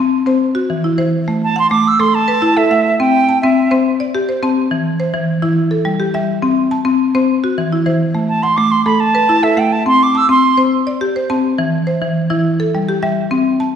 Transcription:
0.00 0.25 C4 medium
0.00 0.27 A5 medium
0.26 0.41 C4 medium
0.26 0.56 C5 medium
0.55 0.98 F#4 medium
0.70 0.97 E3 medium
0.84 1.27 E4 medium
0.98 1.27 E3 medium
0.98 1.42 C5 medium
1.28 1.56 A3 medium
1.44 1.56 A5 medium
1.56 1.99 F#5 medium
1.56 1.70 C6 medium
1.70 1.98 A3 medium
1.70 1.89 D6 medium
1.88 2.02 E6 medium
1.99 2.28 A3 medium
1.99 2.42 A4 medium
1.99 2.16 C6 medium
2.15 2.59 A5 medium
2.28 2.71 B4 medium
2.42 2.71 E4 medium
2.57 3.00 A4 medium
2.57 2.99 E5 medium
2.71 3.00 A3 medium
2.71 3.14 F#5 medium
2.99 3.28 C4 medium
2.99 3.39 G5 medium
3.29 3.71 A5 medium
3.42 3.70 C4 medium
3.42 3.72 E5 medium
3.71 4.00 C4 medium
3.71 4.14 C5 medium
4.00 4.43 D5 medium
4.15 4.43 G4 medium
4.29 4.71 C5 medium
4.43 4.71 C4 medium
4.43 4.86 A5 medium
4.71 5.00 E3 medium
5.00 5.43 C5 medium
5.14 5.41 E3 medium
5.42 5.57 E3 medium
5.42 5.71 E4 medium
5.71 6.14 A4 medium
5.85 6.13 G3 medium
6.00 6.43 G4 medium
6.14 6.43 G3 medium
6.14 6.57 E5 medium
6.42 6.71 C4 medium
6.71 7.14 A5 medium
6.85 7.13 C4 medium
7.15 7.29 C4 medium
7.15 7.43 C5 medium
7.44 7.86 F#4 medium
7.58 7.85 E3 medium
7.73 8.15 E4 medium
7.86 8.15 E3 medium
7.86 8.29 C5 medium
8.15 8.43 A3 medium
8.29 8.44 A5 medium
8.43 8.86 F#5 medium
8.43 8.58 C6 medium
8.57 8.85 A3 medium
8.57 8.73 D6 medium
8.71 8.85 C6 medium
8.85 9.15 A3 medium
8.85 9.29 A4 medium
8.85 9.02 B5 medium
9.00 9.45 A5 loud
9.15 9.58 B4 medium
9.29 9.58 E4 medium
9.43 9.86 A4 medium
9.43 9.60 E5 medium
9.57 9.86 A3 medium
9.57 10.01 F#5 medium
9.57 9.74 G5 medium
9.72 9.87 A5 medium
9.86 10.15 C4 medium
9.86 10.05 C6 loud
10.03 10.19 D6 medium
10.15 10.58 A5 medium
10.15 10.30 E6 loud
10.29 10.57 C4 medium
10.29 10.60 C6 medium
10.57 10.87 C4 medium
10.57 11.01 C5 medium
10.87 11.30 D5 medium
11.01 11.30 G4 medium
11.16 11.59 C5 medium
11.30 11.59 C4 medium
11.30 11.73 A5 medium
11.58 11.87 E3 medium
11.87 12.30 C5 medium
12.02 12.29 E3 medium
12.30 12.45 E3 medium
12.30 12.59 E4 medium
12.60 13.03 A4 medium
12.75 13.01 G3 medium
12.89 13.31 G4 medium
13.03 13.31 G3 medium
13.03 13.46 E5 medium
13.31 13.60 C4 medium
13.60 13.76 A5 medium

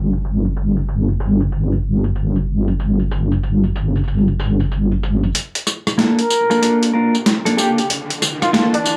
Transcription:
0.00 5.32 G1 medium
0.00 downlifter medium
0.13 tambourine soft
0.25 tambourine soft
0.45 tambourine soft
0.56 tambourine medium
0.77 tambourine soft
0.88 tambourine soft
1.08 tambourine soft
1.20 tambourine medium
1.40 tambourine soft
1.52 tambourine soft
1.72 tambourine soft
2.04 tambourine soft
2.16 tambourine soft
2.36 tambourine soft
2.68 tambourine soft
2.80 tambourine soft
2.99 tambourine soft
3.11 tambourine medium
3.32 tambourine soft
3.43 tambourine soft
3.64 tambourine soft
3.76 tambourine medium
3.96 tambourine soft
4.04 tambourine soft
4.08 tambourine soft
4.14 tambourine soft
4.18 tambourine soft
4.28 tambourine soft
4.40 tambourine medium
4.60 tambourine soft
4.71 tambourine soft
4.92 tambourine soft
5.03 tambourine medium
5.23 tambourine soft
5.35 closed hi-hat medium
5.35 tambourine soft
5.35 riser medium
5.55 closed hi-hat medium
5.55 tambourine soft
5.67 cross-stick soft
5.67 tambourine medium
5.87 cross-stick medium
5.87 tambourine soft
5.98 6.20 A#3 medium
5.98 6.20 D4 medium
5.98 6.20 F4 medium
5.98 6.20 A4 medium
5.98 snare loud
5.98 closed hi-hat medium
5.98 tambourine soft
6.19 6.83 A#4 medium
6.19 closed hi-hat medium
6.19 tambourine soft
6.30 tambourine medium
6.50 6.61 A#3 medium
6.50 6.61 D4 medium
6.50 6.60 F4 medium
6.50 6.61 A4 loud
6.50 tambourine soft
6.62 6.91 A#3 medium
6.62 6.91 D4 medium
6.62 6.91 F4 medium
6.62 6.91 A4 medium
6.62 closed hi-hat medium
6.62 tambourine soft
6.83 closed hi-hat soft
6.83 tambourine soft
6.93 7.15 A#3 medium
6.93 7.15 D4 medium
6.93 7.15 F4 medium
6.93 7.15 A#4 medium
7.15 tambourine soft
7.26 snare loud
7.26 closed hi-hat medium
7.26 tambourine soft
7.45 7.55 A#3 medium
7.45 7.55 D4 medium
7.45 7.55 F4 medium
7.45 7.55 A4 medium
7.45 closed hi-hat medium
7.45 tambourine soft
7.57 7.79 A#3 medium
7.57 7.79 D4 medium
7.57 7.79 F4 medium
7.57 7.71 G4 medium
7.57 7.79 A4 loud
7.57 tambourine medium
7.78 7.86 G4 medium
7.78 closed hi-hat soft
7.78 tambourine soft
7.90 closed hi-hat medium
7.90 tambourine soft
8.10 closed hi-hat medium
8.10 tambourine soft
8.22 cross-stick soft
8.22 tambourine medium
8.42 8.50 F4 medium
8.42 cross-stick medium
8.42 tambourine soft
8.53 8.75 A#3 medium
8.53 8.75 D4 medium
8.53 8.67 F4 medium
8.53 8.75 F4 medium
8.53 8.75 A4 medium
8.53 snare loud
8.53 closed hi-hat medium
8.53 tambourine soft
8.74 8.97 D4 loud
8.74 closed hi-hat medium
8.86 tambourine medium

